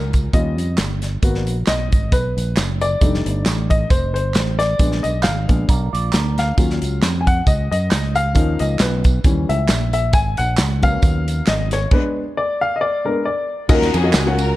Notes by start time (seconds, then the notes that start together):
Already playing: C#2 F#3 C#4 F4 A#4
0.13 kick, closed hi-hat, tambourine
0.33 D#2 G3 C#4 F4 D#5, kick, closed hi-hat, tambourine
0.58 F2, closed hi-hat, tambourine
0.78 G1, snare, clap, closed hi-hat, tambourine
1.02 snare, closed hi-hat, tambourine
1.22 G#1 A#3 B3 F#4, kick, closed hi-hat, tambourine
1.35 snare
1.47 A#1, closed hi-hat, tambourine
1.67 B1 D#5, snare, clap, closed hi-hat, tambourine
1.92 G#1, kick, closed hi-hat, tambourine
2.12 B1 B4, kick, closed hi-hat, tambourine
2.37 A#1, closed hi-hat, tambourine
2.57 F#1, snare, clap, closed hi-hat, tambourine
2.81 D5, closed hi-hat, tambourine
3.01 F1 G3 A3 D4 D#4, kick, closed hi-hat, tambourine
3.14 snare
3.26 G1, closed hi-hat, tambourine
3.46 A1, snare, clap, closed hi-hat, tambourine
3.70 D#5, kick, closed hi-hat, tambourine
3.90 F1 C5, kick, closed hi-hat, tambourine
4.14 G1 C5, closed hi-hat, tambourine
4.34 A1, snare, clap, closed hi-hat, tambourine
4.59 D5, snare, closed hi-hat, tambourine
4.79 A#1 G#3 B3 D4, kick, closed hi-hat, tambourine
4.92 snare
5.03 B1 D#5, closed hi-hat, tambourine
5.23 G#1 F5, snare, clap, closed hi-hat, tambourine
5.48 A#1 G#3 B3 D4, kick, closed hi-hat, tambourine
5.68 B1 D4 A#4, kick, closed hi-hat, tambourine
5.93 A#1 F4 D5, closed hi-hat, tambourine
6.12 D2 D4 A#4, snare, clap, closed hi-hat, tambourine
6.38 F5, snare, closed hi-hat, tambourine
6.58 D#2 F#3 C#4 F4, kick, closed hi-hat, tambourine
6.70 snare
6.82 C#2, closed hi-hat, tambourine
7.02 F2, snare, clap, closed hi-hat, tambourine
7.21 G#5
7.27 F#5, kick, closed hi-hat, tambourine
7.47 C#2 D#5, kick, closed hi-hat, tambourine
7.71 F#2 D#5, closed hi-hat, tambourine
7.91 C#2, snare, clap, closed hi-hat, tambourine
8.15 F5, closed hi-hat, tambourine
8.34 D#2 F3 A#3 C#4 D#4, kick, closed hi-hat, tambourine
8.59 C#2 D#5, closed hi-hat, tambourine
8.79 B1 B4, snare, clap, closed hi-hat, tambourine
9.04 kick, closed hi-hat, tambourine
9.24 D#2 E3 G3 C#4, kick, closed hi-hat, tambourine
9.49 C#2 E5, closed hi-hat, tambourine
9.68 A#1, snare, clap, closed hi-hat, tambourine
9.93 E5, closed hi-hat, tambourine
10.13 G#1 G#5, kick, closed hi-hat, tambourine
10.37 A#1 F#5, closed hi-hat, tambourine
10.57 C#2, snare, clap, closed hi-hat, tambourine
10.82 F#3 A#3 B3 C#4 F5, kick, closed hi-hat, tambourine
11.02 D#2, kick, closed hi-hat, tambourine
11.28 closed hi-hat, tambourine
11.47 G#1 D#5, snare, clap, closed hi-hat, tambourine
11.71 C#5, snare, closed hi-hat, tambourine
11.91 G#3 B3 D4 B4, kick, crash
12.37 D5
12.61 F5
12.76 D#5
12.81 D5
13.05 G#3 B3 D4 A#4
13.25 D5
13.69 D#2 D#3 C#4 F4 F#4 A#4 D#5, kick, crash, tambourine
13.82 snare
13.94 F2 G#4, ride, tambourine
14.04 C#4 F4 F#4 A#4 D#5
14.13 C#2 G#4, snare, clap, ride, tambourine
14.27 C#4 F4 F#4 A#4 F#5
14.38 A#4, ride, tambourine